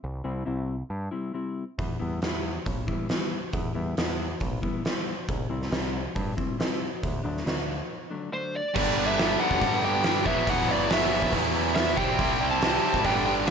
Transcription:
0.04 C2
0.24 C2 C3 G3 C4 E4
0.45 C2 C3 G3 C4 E4
0.90 G2
1.11 C3 G3 C4 E4
1.33 C3 G3 C4 E4
1.78 E2, kick, open hi-hat
1.99 E2 E3 G3 B3 E4
2.21 E2 E3 G3 B3 E4, snare, open hi-hat
2.66 B1, kick, open hi-hat
2.87 E3 G3 B3 E4, kick
3.09 E3 G3 B3 E4, snare, open hi-hat
3.53 E2, kick, open hi-hat
3.75 E2 E3 G3 B3 E4
3.97 E2 E3 G3 B3 E4, snare, open hi-hat
4.40 B1, kick, open hi-hat
4.62 E3 G3 B3 E4, kick
4.84 E3 G3 B3 E4, snare, open hi-hat
5.28 C2, kick, open hi-hat
5.50 C2 C3 G3 C4 E4
5.62 snare
5.71 C2 C3 G3 C4 E4, snare, open hi-hat
6.15 G2, kick, open hi-hat
6.37 C3 G3 C4 E4, kick
6.58 C3 G3 C4 E4, snare, open hi-hat
7.03 D2, kick, open hi-hat
7.23 D2 D3 F#3 A3 D4
7.37 snare
7.46 D2 D3 F#3 A3 D4, snare, open hi-hat
8.10 D3 F#3 A3 D4
8.32 D3 F#3 A3 D4 C5
8.55 D5
8.75 G1 G2 D3 G3 B3 D4 G4 B4 D5 A5, kick, crash
8.97 G3 B3 D4
9.07 E5
9.17 D3 G3 B3 D4, snare, open hi-hat
9.40 G3 B3 D4 F#5
9.51 E1, kick, snare
9.60 G2 D3 G3 B3 D4, kick, open hi-hat
9.82 G3 B3 D4 G5
10.04 G2 D3 G3 B3 D4, snare, open hi-hat
10.24 E1 E2 B2 E3 F#3 B3 E4 F#4 E5 B5, kick
10.47 E1 E3 F#3 B3 E4 F#5, kick, open hi-hat
10.67 F#1 F#3 B3 E4 D5
10.90 E3 F#3 B3 E4 E5, snare, open hi-hat
11.11 F#3 B3 E4
11.22 B1, kick, snare
11.32 E2 E3 F#3 B3 E4, kick, open hi-hat
11.55 F#3 B3 E4
11.75 E3 F#3 B3 E4 E5, snare, open hi-hat
11.97 C2 C3 G3 C4 E4 G4 D5 G5 C6, kick
12.18 C2 C3 G3 C4 E4, kick, open hi-hat
12.40 G3 C4 E4
12.51 A5
12.62 C3 G3 C4 E4, snare, open hi-hat
12.83 G3 C4 E4
12.93 G#1, kick, snare
13.03 G1 G2 D3 G3 B3 D4 B4 G5 A5, kick, open hi-hat
13.26 G3 B3 D4 G5
13.47 G2 D3, open hi-hat

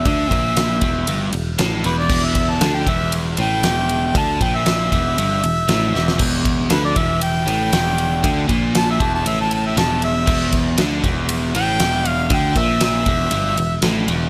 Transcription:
Already playing: E5
0.05 D2 D3, kick, ride
0.31 A#1 A#2, kick, ride
0.57 snare, ride
0.81 E1 E2, kick, ride
1.07 G1 G2, ride
1.33 E1 E2, ride
1.59 A1 A2, snare, ride
1.84 E1 E2 B4, ride
1.99 D5
2.09 E1 E2, kick, crash
2.25 E5
2.35 kick, ride
2.50 A5
2.61 D2 D3, snare, ride
2.75 G5
2.87 E1 E2 E5, kick, ride
3.12 ride
3.37 A1 A2 G5, ride
3.63 E1 E2, snare, ride
3.89 ride
4.15 D2 D3 A5, kick, ride
4.41 A#1 A#2 G5, kick, ride
4.56 E5
4.66 snare, ride
4.92 E1 E2 E5, kick, ride
5.17 G1 G2, ride
5.44 E1 E2, ride
5.68 A1 A2, snare, ride
5.93 E1 E2, snare
6.08 snare
6.18 E1 E2, kick, crash
6.45 kick, ride
6.69 D2 D3 B4, snare, ride
6.85 D5
6.95 E1 E2 E5, kick, ride
7.21 G5, ride
7.46 A1 A2 G5, ride
7.73 E1 E2, snare, ride
7.98 ride
8.23 D2 D3, kick, ride
8.48 A#1 A#2, kick, ride
8.75 A5, snare, ride
8.91 E5
9.00 E1 E2 A5, kick, ride
9.15 A5
9.25 A1 A2 E5, ride
9.41 A5
9.51 A5, ride
9.67 E5
9.76 E1 E2 A5, snare, ride
10.02 E5, ride
10.26 E1 E2, kick, crash
10.53 kick, ride
10.78 D2 D3, snare, ride
11.03 E1 E2, kick, ride
11.29 ride
11.55 A1 A2 G5, ride
11.80 E1 E2, snare, ride
12.05 F5, ride
12.29 D2 D3, kick, ride
12.33 G5
12.56 A#1 A#2 E5, kick, ride
12.81 E5, snare, ride
13.06 E1 E2, kick, ride
13.31 G1 G2, ride
13.57 E1 E2, ride
13.82 A1 A2, snare, ride
14.08 E1 E2, ride

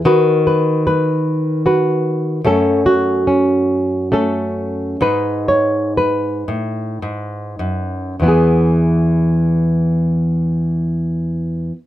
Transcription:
0.05 D#3 F#4 B4
0.47 B4
0.87 B4
1.66 F#4 B4
2.44 F#2 A3 C#4 A4
2.86 F#4
3.27 C#4
4.12 A3 C#4 A4
5.01 G#2 D#4 B4
5.48 C#5
5.97 B4
6.48 A2
7.02 G#2
7.59 F#2
8.20 E2 E3 B3
8.26 E4 G#4

